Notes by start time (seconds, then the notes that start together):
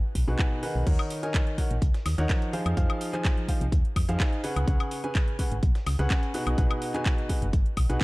0.15 B1, kick, open hi-hat
0.28 B1 B2 D#4 G#4 B4 F#5
0.39 B2 D#4 G#4 B4 F#5, kick, clap
0.63 D#3 D#4 G#4 B4 F#5, open hi-hat
0.75 B1
0.87 D#2 D#3 D#4 A#4 C#5 F#5, kick, closed hi-hat, crash
0.99 closed hi-hat, high woodblock
1.10 closed hi-hat, open hi-hat
1.23 D#3 D#4 A#4 C#5 G#5, closed hi-hat
1.34 kick, snare, clap, closed hi-hat
1.47 closed hi-hat
1.58 D#3 D#4 A#4 C#5 F#5, kick, closed hi-hat, open hi-hat
1.71 A#1, closed hi-hat
1.82 C#2, kick, closed hi-hat
1.94 snare, closed hi-hat
2.06 D#2, snare, open hi-hat, high woodblock
2.18 D#2 D#3 D#4 A#4 C#5 F#5, closed hi-hat
2.29 F3 A#4 C#5, kick, snare, clap, closed hi-hat
2.42 closed hi-hat
2.53 F3 D#4 G#4 C5 F5, closed hi-hat, open hi-hat
2.66 F2, closed hi-hat, high woodblock
2.77 F2 F3 D#4 G#4 C5 F5, kick, closed hi-hat
2.90 closed hi-hat, high woodblock
3.01 closed hi-hat, open hi-hat
3.13 F3 D#4 G#4 C5 G#5, clap, closed hi-hat
3.25 kick, snare, clap, closed hi-hat
3.37 closed hi-hat
3.48 F3 D#4 G#4 C5 F5, kick, closed hi-hat, open hi-hat
3.61 C2, closed hi-hat
3.72 D#2, kick, closed hi-hat
3.85 closed hi-hat
3.96 F2, kick, closed hi-hat, open hi-hat, high woodblock
4.09 F2 F3 D#4 G#4 C5 F5, closed hi-hat
4.20 D#4 G#4 C5 F5, kick, snare, clap, closed hi-hat
4.33 closed hi-hat
4.44 C#3 C#4 G#4 B4 F#5, closed hi-hat, open hi-hat
4.56 C#2, closed hi-hat, high woodblock
4.67 C#2 C#3 C#4 G#4 B4 F#5, kick, closed hi-hat
4.80 closed hi-hat, high woodblock
4.91 closed hi-hat, open hi-hat
5.04 C#3 C#4 G#4 B4 G#5, closed hi-hat
5.15 kick, snare, clap, closed hi-hat
5.28 closed hi-hat
5.39 C#3 C#4 G#4 B4 F#5, kick, closed hi-hat, open hi-hat
5.51 G#1, closed hi-hat
5.63 B1, kick, closed hi-hat
5.75 snare, closed hi-hat
5.86 C#2, snare, open hi-hat, high woodblock
5.99 C#2 C#3 C#4 G#4 B4 F#5, closed hi-hat
6.10 C#4 G#4 B4 F#5, kick, snare, clap, closed hi-hat
6.23 closed hi-hat
6.34 B2 D#4 G#4 B4 F#5, closed hi-hat, open hi-hat
6.47 B1, closed hi-hat, high woodblock
6.58 B1 B2 D#4 G#4 B4 F#5, kick, closed hi-hat
6.71 closed hi-hat, high woodblock
6.82 closed hi-hat, open hi-hat
6.94 B2 D#4 G#4 B4 G#5, clap, closed hi-hat
7.05 kick, snare, clap, closed hi-hat
7.18 closed hi-hat
7.29 B2 D#4 G#4 B4 F#5, kick, closed hi-hat, open hi-hat
7.42 F#1, closed hi-hat
7.53 G#1, kick, closed hi-hat
7.66 closed hi-hat
7.77 B1, kick, closed hi-hat, open hi-hat, high woodblock
7.89 B1 B2 D#4 G#4 B4 F#5, closed hi-hat
8.01 B2 D#4 G#4 B4 F#5, kick, snare, closed hi-hat